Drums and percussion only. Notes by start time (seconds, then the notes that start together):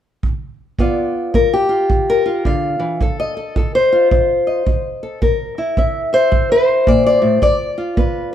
0.23 kick
0.79 kick
1.34 kick
1.90 kick
2.45 kick
3.01 kick
3.56 kick
4.11 kick
4.67 kick
5.22 kick
5.77 kick
6.32 kick
6.87 kick
7.42 kick
7.97 kick